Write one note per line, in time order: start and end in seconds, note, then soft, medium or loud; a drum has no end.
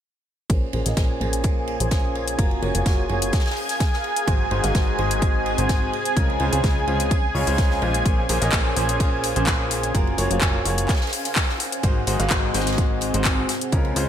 0.50 0.71 A#1 medium
0.50 0.65 A#2 medium
0.50 0.65 A#3 medium
0.50 3.05 C#4 medium
0.50 0.65 C#4 medium
0.50 14.09 G#4 medium
0.50 0.65 G#4 medium
0.50 0.65 C5 medium
0.50 14.09 G#5 medium
0.50 kick loud
0.50 closed hi-hat medium
0.50 ride medium
0.73 0.83 A#1 medium
0.73 0.84 A#2 medium
0.73 0.84 A#3 medium
0.73 0.84 C#4 medium
0.73 0.84 G#4 medium
0.73 0.84 C5 medium
0.73 ride medium
0.86 0.95 A#1 medium
0.86 0.95 A#2 medium
0.86 0.95 A#3 medium
0.86 0.95 C#4 medium
0.86 0.95 G#4 medium
0.86 0.95 D#5 loud
0.86 snare soft
0.86 closed hi-hat medium
0.97 1.18 A#1 medium
0.97 1.18 A#2 medium
0.97 1.18 A#3 medium
0.97 1.18 G#4 medium
0.97 1.18 C5 medium
0.97 3.05 G#5 medium
0.97 kick loud
0.97 snare loud
0.97 closed hi-hat medium
0.97 ride medium
1.21 1.78 A#1 medium
1.21 1.77 A#2 medium
1.21 1.77 A#3 medium
1.21 1.77 C#4 medium
1.21 1.77 G#4 medium
1.21 1.77 C5 loud
1.21 ride medium
1.33 3.05 C5 medium
1.33 closed hi-hat medium
1.44 kick loud
1.44 closed hi-hat medium
1.44 ride medium
1.67 ride medium
1.80 2.36 A#1 medium
1.80 2.36 A#2 medium
1.80 2.36 A#3 medium
1.80 2.36 C#4 medium
1.80 2.36 G#4 medium
1.80 2.36 C5 medium
1.80 closed hi-hat medium
1.91 kick loud
1.91 snare loud
1.91 closed hi-hat medium
1.91 ride medium
2.15 ride medium
2.28 closed hi-hat medium
2.39 2.60 F#1 medium
2.39 2.59 A#3 medium
2.39 2.59 F4 medium
2.39 2.59 F#4 medium
2.39 2.59 A#4 medium
2.39 4.04 F5 medium
2.39 kick loud
2.39 closed hi-hat soft
2.39 ride medium
2.51 ride soft
2.62 2.72 F#1 medium
2.62 2.72 A#3 medium
2.62 2.72 F4 medium
2.62 2.72 F#4 medium
2.62 2.72 C#5 medium
2.62 ride medium
2.75 2.84 F#1 medium
2.75 2.84 A#3 medium
2.75 2.84 F4 medium
2.75 2.84 F#4 medium
2.75 closed hi-hat medium
2.86 3.07 F#1 medium
2.86 3.02 A#3 medium
2.86 3.02 F4 medium
2.86 3.02 F#4 medium
2.86 4.80 A#4 medium
2.86 3.02 C#5 medium
2.86 5.93 F#5 medium
2.86 kick loud
2.86 snare loud
2.86 closed hi-hat medium
2.86 ride medium
3.09 3.32 F#1 medium
3.09 3.34 A#3 medium
3.09 3.34 F4 medium
3.09 3.34 F#4 medium
3.09 3.34 C#5 medium
3.09 ride medium
3.22 closed hi-hat medium
3.33 kick loud
3.33 snare medium
3.33 closed hi-hat medium
3.33 ride medium
3.40 snare medium
3.40 ride medium
3.46 snare medium
3.46 ride medium
3.50 snare medium
3.50 ride medium
3.56 open hi-hat medium
3.69 snare soft
3.69 closed hi-hat medium
3.80 kick loud
3.80 snare loud
3.80 closed hi-hat medium
3.80 ride medium
3.93 snare soft
4.04 5.93 C4 medium
4.04 ride medium
4.15 6.79 G#4 medium
4.15 closed hi-hat medium
4.28 4.49 G#1 medium
4.28 4.43 G#2 medium
4.28 4.43 G#3 medium
4.28 4.43 D#4 medium
4.28 4.43 F#4 medium
4.28 4.43 C5 medium
4.28 kick loud
4.28 closed hi-hat soft
4.28 ride medium
4.51 4.61 G#1 medium
4.51 4.62 G#2 medium
4.51 4.62 G#3 medium
4.51 4.62 D#4 medium
4.51 4.62 F#4 medium
4.51 4.62 C5 medium
4.51 ride medium
4.63 4.73 G#1 medium
4.63 4.73 G#2 medium
4.63 4.73 G#3 medium
4.63 4.73 D#4 medium
4.63 4.73 F#4 medium
4.63 4.73 F5 loud
4.63 snare soft
4.63 closed hi-hat medium
4.75 4.96 G#1 medium
4.75 4.96 G#2 medium
4.75 4.96 G#3 medium
4.75 4.96 D#4 medium
4.75 4.96 F#4 medium
4.75 4.96 C5 medium
4.75 kick loud
4.75 snare loud
4.75 closed hi-hat soft
4.75 ride medium
4.98 5.56 G#1 medium
4.98 5.55 G#2 medium
4.98 5.55 G#3 medium
4.98 5.55 D#4 medium
4.98 5.55 F#4 medium
4.98 5.55 C5 loud
4.98 ride medium
5.11 closed hi-hat medium
5.22 kick loud
5.22 closed hi-hat soft
5.22 ride medium
5.46 ride medium
5.58 5.89 G#1 medium
5.58 5.92 G#2 medium
5.58 5.92 G#3 medium
5.58 5.92 D#4 medium
5.58 5.92 F#4 medium
5.58 5.92 C5 medium
5.58 closed hi-hat medium
5.69 kick loud
5.69 snare loud
5.69 closed hi-hat soft
5.69 ride medium
5.93 10.61 C#4 medium
5.93 ride medium
6.05 closed hi-hat medium
6.17 6.38 C#2 loud
6.17 6.37 C#3 medium
6.17 6.37 G#3 medium
6.17 6.37 C#4 medium
6.17 6.37 F4 medium
6.17 6.37 A#4 medium
6.17 kick loud
6.17 closed hi-hat soft
6.17 ride medium
6.28 10.61 C5 medium
6.28 ride soft
6.40 6.50 C#2 medium
6.40 6.50 C#3 medium
6.40 6.50 G#3 medium
6.40 6.50 C#4 medium
6.40 6.50 F4 medium
6.40 6.50 C5 medium
6.40 ride medium
6.53 6.62 C#2 medium
6.53 6.62 C#3 medium
6.53 6.62 G#3 medium
6.53 6.62 C#4 medium
6.53 6.62 F4 medium
6.53 6.62 C5 medium
6.53 closed hi-hat medium
6.64 6.85 C#2 medium
6.64 6.80 C#3 medium
6.64 6.80 G#3 medium
6.64 6.80 C#4 medium
6.64 6.80 F4 medium
6.64 6.80 C5 medium
6.64 kick loud
6.64 snare loud
6.64 closed hi-hat soft
6.64 ride medium
6.87 7.32 C#2 medium
6.87 7.12 C#3 medium
6.87 7.12 G#3 medium
6.87 7.12 C#4 medium
6.87 7.12 F4 medium
6.87 7.12 C5 medium
6.87 8.81 F5 medium
6.87 ride medium
7.00 closed hi-hat medium
7.11 kick loud
7.11 closed hi-hat soft
7.11 ride medium
7.35 7.45 C#2 medium
7.35 7.44 C#3 medium
7.35 7.44 G#3 medium
7.35 7.44 C#4 medium
7.35 7.44 F4 medium
7.35 7.44 C#5 loud
7.35 open hi-hat medium
7.47 7.80 C#2 medium
7.47 7.79 C#3 medium
7.47 7.79 G#3 medium
7.47 7.79 C#4 medium
7.47 7.79 F4 medium
7.47 7.79 C5 loud
7.47 snare soft
7.47 closed hi-hat medium
7.58 kick loud
7.58 snare loud
7.58 closed hi-hat soft
7.58 ride medium
7.71 snare soft
7.82 8.03 A#1 medium
7.82 8.02 A#2 medium
7.82 8.02 G#3 medium
7.82 8.02 C#4 medium
7.82 8.02 F4 medium
7.82 8.02 C5 medium
7.82 ride medium
7.94 closed hi-hat medium
8.06 8.27 A#1 medium
8.06 8.21 A#2 medium
8.06 8.21 A#3 medium
8.06 8.21 C#4 medium
8.06 8.21 G#4 medium
8.06 8.21 C5 medium
8.06 kick loud
8.06 closed hi-hat soft
8.06 ride medium
8.29 8.39 A#1 medium
8.29 8.40 A#2 medium
8.29 8.40 A#3 medium
8.29 8.40 C#4 medium
8.29 8.40 G#4 medium
8.29 8.40 C5 medium
8.29 open hi-hat loud
8.29 ride medium
8.42 8.51 A#1 loud
8.42 8.51 A#2 medium
8.42 8.51 A#3 medium
8.42 8.51 C#4 medium
8.42 8.51 G#4 medium
8.42 8.51 D#5 loud
8.42 snare soft
8.42 closed hi-hat medium
8.52 8.74 A#1 medium
8.52 8.74 A#2 medium
8.52 8.74 A#3 medium
8.52 8.74 C#4 medium
8.52 8.74 G#4 medium
8.52 8.74 C5 medium
8.52 kick loud
8.52 snare loud
8.52 clap loud
8.52 closed hi-hat soft
8.52 ride medium
8.76 9.34 A#1 medium
8.76 9.33 A#2 medium
8.76 9.33 A#3 medium
8.76 9.33 C#4 medium
8.76 9.33 G#4 medium
8.76 9.33 C5 loud
8.76 open hi-hat loud
8.76 ride medium
8.89 10.61 G#5 medium
8.89 closed hi-hat medium
9.00 kick loud
9.00 closed hi-hat soft
9.00 ride medium
9.24 open hi-hat loud
9.24 ride medium
9.36 9.92 A#1 medium
9.36 9.92 A#2 medium
9.36 9.92 A#3 medium
9.36 9.92 C#4 medium
9.36 9.92 G#4 medium
9.36 9.92 C5 medium
9.36 closed hi-hat medium
9.47 kick loud
9.47 snare loud
9.47 clap loud
9.47 closed hi-hat soft
9.47 ride medium
9.71 open hi-hat loud
9.71 ride medium
9.83 closed hi-hat medium
9.95 10.16 F#1 loud
9.95 10.15 A#3 medium
9.95 10.15 F4 medium
9.95 10.15 F#4 medium
9.95 10.15 A#4 medium
9.95 11.60 F5 medium
9.95 kick loud
9.95 closed hi-hat soft
9.95 ride medium
10.07 ride soft
10.18 10.28 F#1 medium
10.18 10.28 A#3 medium
10.18 10.28 F4 medium
10.18 10.28 F#4 medium
10.18 10.28 C#5 loud
10.18 open hi-hat loud
10.18 ride medium
10.31 10.40 F#1 loud
10.31 10.40 A#3 medium
10.31 10.40 F4 medium
10.31 10.40 F#4 medium
10.31 10.40 C#5 medium
10.31 closed hi-hat medium
10.41 10.63 F#1 medium
10.41 10.58 A#3 medium
10.41 10.58 F4 medium
10.41 10.58 F#4 medium
10.41 10.58 C#5 loud
10.41 kick loud
10.41 snare loud
10.41 clap loud
10.41 closed hi-hat soft
10.41 ride medium
10.65 10.88 F#1 medium
10.65 10.90 A#3 medium
10.65 10.90 F4 medium
10.65 10.90 F#4 medium
10.65 12.36 A#4 medium
10.65 10.90 C#5 medium
10.65 13.49 F#5 medium
10.65 open hi-hat loud
10.65 ride medium
10.78 closed hi-hat medium
10.89 kick loud
10.89 snare medium
10.89 clap medium
10.89 closed hi-hat soft
10.89 ride medium
10.95 snare medium
10.95 ride medium
11.01 snare medium
11.01 ride medium
11.07 snare medium
11.07 ride medium
11.13 open hi-hat medium
11.13 open hi-hat loud
11.25 snare soft
11.25 closed hi-hat medium
11.36 kick loud
11.36 snare loud
11.36 clap loud
11.36 closed hi-hat medium
11.36 ride medium
11.49 snare medium
11.60 13.49 C4 medium
11.60 open hi-hat loud
11.60 ride medium
11.72 closed hi-hat medium
11.83 12.05 G#1 loud
11.83 11.99 G#2 medium
11.83 11.99 G#3 medium
11.83 11.99 D#4 medium
11.83 11.99 F#4 medium
11.83 11.99 C5 medium
11.83 kick loud
11.83 closed hi-hat medium
11.83 ride medium
12.07 12.17 G#1 medium
12.07 12.18 G#2 medium
12.07 12.18 G#3 medium
12.07 12.18 D#4 medium
12.07 12.18 F#4 medium
12.07 12.18 C5 medium
12.07 open hi-hat loud
12.07 ride medium
12.12 14.09 G#4 medium
12.19 12.29 G#1 loud
12.19 12.29 G#2 medium
12.19 12.29 G#3 medium
12.19 12.29 D#4 medium
12.19 12.29 F#4 medium
12.19 12.29 F5 loud
12.19 snare soft
12.19 closed hi-hat medium
12.30 12.52 G#1 loud
12.30 12.52 G#2 medium
12.30 12.52 G#3 medium
12.30 12.52 D#4 medium
12.30 12.52 F#4 medium
12.30 12.52 C5 medium
12.30 kick loud
12.30 snare loud
12.30 clap loud
12.30 closed hi-hat medium
12.30 ride medium
12.53 13.12 G#1 medium
12.53 13.11 G#2 medium
12.53 13.11 G#3 medium
12.53 13.11 D#4 medium
12.53 13.11 F#4 medium
12.53 13.11 C5 loud
12.53 snare medium
12.53 open hi-hat loud
12.53 ride medium
12.60 snare medium
12.60 ride medium
12.67 snare medium
12.67 closed hi-hat medium
12.67 ride medium
12.72 snare medium
12.72 ride medium
12.78 kick loud
12.78 closed hi-hat medium
12.78 ride medium
13.01 open hi-hat medium
13.01 ride medium
13.14 13.45 G#1 medium
13.14 13.48 G#2 medium
13.14 13.48 G#3 medium
13.14 13.48 D#4 medium
13.14 13.48 F#4 medium
13.14 13.48 C5 medium
13.14 closed hi-hat medium
13.25 kick loud
13.25 snare loud
13.25 clap loud
13.25 closed hi-hat medium
13.25 ride medium
13.49 14.09 C#4 medium
13.49 snare loud
13.49 open hi-hat loud
13.49 ride medium
13.61 closed hi-hat medium
13.72 13.94 C#2 loud
13.72 13.93 C#3 medium
13.72 13.93 G#3 medium
13.72 13.93 C#4 medium
13.72 13.93 F4 medium
13.72 13.93 A#4 medium
13.72 kick loud
13.72 closed hi-hat medium
13.72 ride medium
13.85 ride soft
13.96 14.06 C#2 medium
13.96 14.06 C#3 medium
13.96 14.06 G#3 medium
13.96 14.06 C#4 medium
13.96 14.06 F4 medium
13.96 14.06 C5 loud
13.96 open hi-hat loud
13.96 ride medium